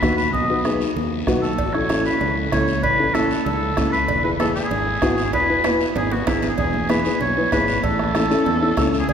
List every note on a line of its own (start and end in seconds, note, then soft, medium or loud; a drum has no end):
0.00 0.33 D#2 medium
0.00 0.19 B3 medium
0.00 0.19 D#4 medium
0.00 0.19 F#4 medium
0.00 0.16 B4 medium
0.00 bombo low medium
0.00 bombo rim medium
0.00 high conga medium
0.00 low conga medium
0.00 short guiro medium
0.17 0.32 B4 medium
0.17 short guiro medium
0.33 0.83 B1 medium
0.33 0.62 D#5 loud
0.33 bombo low medium
0.33 high conga soft
0.33 low conga medium
0.33 long guiro medium
0.49 0.55 B3 medium
0.49 0.55 D#4 medium
0.49 0.55 F#4 medium
0.65 0.87 B3 medium
0.65 0.87 D#4 medium
0.65 0.87 G#4 medium
0.65 bombo rim medium
0.65 high conga medium
0.65 short guiro medium
0.81 short guiro medium
0.96 1.21 D#2 medium
0.96 high conga soft
0.96 low conga medium
0.96 long guiro medium
1.27 1.58 B1 medium
1.27 1.44 B3 medium
1.27 1.44 D#4 medium
1.27 1.44 F#4 medium
1.27 bombo low medium
1.27 bombo rim medium
1.27 high conga medium
1.27 low conga medium
1.27 short guiro medium
1.42 1.75 A4 medium
1.42 short guiro medium
1.58 2.08 A1 loud
1.58 bombo low medium
1.58 cowbell loud
1.58 long guiro medium
1.73 1.80 C#4 medium
1.73 1.80 E4 medium
1.73 1.80 A4 medium
1.73 2.05 C#5 loud
1.73 bombo rim medium
1.89 2.11 C#4 medium
1.89 2.12 E4 medium
1.89 2.12 A4 medium
1.89 bombo rim medium
1.89 cowbell medium
1.89 high conga medium
1.89 short guiro medium
2.06 2.35 B4 medium
2.06 short guiro medium
2.21 2.46 C#2 medium
2.21 cowbell medium
2.21 high conga soft
2.21 low conga medium
2.21 long guiro medium
2.52 2.83 C#2 medium
2.52 2.69 C#4 medium
2.52 2.69 E4 medium
2.52 2.69 A4 medium
2.52 2.81 C#5 loud
2.52 bombo low medium
2.52 bombo rim medium
2.52 cowbell medium
2.52 high conga medium
2.52 low conga medium
2.52 short guiro medium
2.68 short guiro medium
2.83 3.33 A1 medium
2.83 3.16 B4 loud
2.83 bombo low medium
2.83 cowbell loud
2.83 high conga soft
2.83 long guiro medium
2.99 3.05 C#4 medium
2.99 3.05 E4 medium
2.99 3.05 A4 medium
3.14 3.36 C#4 medium
3.14 3.37 E4 medium
3.14 3.45 A4 loud
3.14 3.37 A4 medium
3.14 bombo rim medium
3.14 cowbell medium
3.14 high conga medium
3.14 short guiro medium
3.31 short guiro medium
3.46 3.71 C#2 medium
3.46 3.90 A4 medium
3.46 cowbell medium
3.46 high conga soft
3.46 low conga medium
3.46 long guiro medium
3.77 4.10 C#2 medium
3.77 3.93 C#4 medium
3.77 3.94 E4 medium
3.77 3.94 A4 medium
3.77 bombo low medium
3.77 bombo rim medium
3.77 cowbell medium
3.77 high conga medium
3.77 low conga medium
3.77 short guiro medium
3.92 4.22 B4 medium
3.92 short guiro medium
4.08 4.59 E1 medium
4.08 bombo low medium
4.08 cowbell loud
4.08 high conga soft
4.08 low conga medium
4.08 long guiro medium
4.24 4.29 B3 medium
4.24 4.29 E4 medium
4.24 4.30 G#4 medium
4.24 4.31 B4 medium
4.40 4.61 B3 medium
4.40 4.62 E4 medium
4.40 4.62 G#4 medium
4.40 4.47 A4 medium
4.40 bombo rim medium
4.40 cowbell medium
4.40 high conga medium
4.40 short guiro medium
4.56 5.30 G#4 medium
4.56 short guiro medium
4.71 4.96 G#1 medium
4.71 cowbell medium
4.71 high conga soft
4.71 low conga medium
4.71 long guiro medium
5.02 5.33 G#1 medium
5.02 5.19 B3 medium
5.02 5.19 E4 medium
5.02 5.19 F#4 medium
5.02 bombo low medium
5.02 bombo rim medium
5.02 cowbell medium
5.02 high conga medium
5.02 low timbale medium
5.02 short guiro medium
5.18 short guiro medium
5.33 5.83 E1 medium
5.33 5.67 B4 loud
5.33 bombo low medium
5.33 cowbell loud
5.33 high conga soft
5.33 low conga medium
5.33 high timbale medium
5.33 long guiro medium
5.49 5.54 B3 medium
5.49 5.55 E4 medium
5.49 5.55 B4 medium
5.64 5.86 B3 medium
5.64 5.87 E4 medium
5.64 5.87 B4 medium
5.64 bombo rim medium
5.64 cowbell medium
5.64 high conga medium
5.64 high timbale medium
5.64 short guiro medium
5.81 short guiro medium
5.95 6.21 G#1 medium
5.95 6.13 G#4 medium
5.95 cowbell medium
5.95 high conga soft
5.95 low conga medium
5.95 low timbale medium
5.95 long guiro medium
6.11 6.27 F#4 medium
6.11 high conga medium
6.11 low timbale medium
6.27 6.52 G#1 medium
6.27 6.43 B3 medium
6.27 6.44 E4 medium
6.27 6.47 E4 medium
6.27 6.44 G#4 medium
6.27 bombo low medium
6.27 bombo rim medium
6.27 cowbell medium
6.27 low conga medium
6.27 low timbale medium
6.27 short guiro medium
6.42 low conga medium
6.42 low timbale medium
6.42 short guiro medium
6.48 6.58 G#4 medium
6.58 7.08 E1 loud
6.58 6.87 G#4 medium
6.58 bombo low medium
6.58 cowbell loud
6.58 low conga medium
6.58 long guiro medium
6.74 high conga medium
6.89 6.95 B3 medium
6.89 6.95 E4 medium
6.89 6.95 G#4 medium
6.89 7.19 B4 medium
6.89 bombo rim medium
6.89 cowbell medium
6.89 high conga medium
6.89 short guiro medium
7.05 7.16 B3 medium
7.05 7.16 E4 medium
7.05 7.17 G#4 medium
7.05 short guiro medium
7.21 7.46 B1 loud
7.21 7.50 C#5 medium
7.21 cowbell medium
7.21 low conga medium
7.21 long guiro medium
7.37 7.42 B3 medium
7.37 7.42 E4 medium
7.37 7.43 B4 medium
7.52 7.77 G#1 medium
7.52 7.74 B3 medium
7.52 7.74 E4 medium
7.52 7.75 G#4 medium
7.52 7.81 B4 loud
7.52 bombo low medium
7.52 bombo rim medium
7.52 cowbell medium
7.52 high conga medium
7.52 low timbale medium
7.52 short guiro medium
7.68 short guiro medium
7.83 8.33 A1 loud
7.83 8.89 A4 loud
7.83 bombo low medium
7.83 cowbell loud
7.83 long guiro medium
7.99 bombo rim medium
7.99 high conga medium
8.15 8.20 C#4 medium
8.15 8.21 E4 medium
8.15 8.21 A4 medium
8.15 bombo rim medium
8.15 cowbell medium
8.15 high conga medium
8.15 short guiro medium
8.30 8.41 C#4 medium
8.30 8.41 E4 medium
8.30 8.42 A4 medium
8.30 short guiro medium
8.46 8.71 E2 loud
8.46 cowbell medium
8.46 low conga medium
8.46 long guiro medium
8.62 8.67 C#4 medium
8.62 8.67 E4 medium
8.62 8.67 A4 medium
8.77 9.02 C#2 medium
8.77 8.99 C#4 medium
8.77 8.99 E4 medium
8.77 9.00 A4 medium
8.77 bombo low medium
8.77 bombo rim medium
8.77 cowbell medium
8.77 high conga medium
8.77 low conga medium
8.77 short guiro medium
8.94 short guiro medium
8.99 9.08 G#4 medium
9.09 9.13 E1 loud
9.09 9.13 G#4 loud
9.09 bombo low medium
9.09 cowbell loud
9.09 low conga medium
9.09 long guiro medium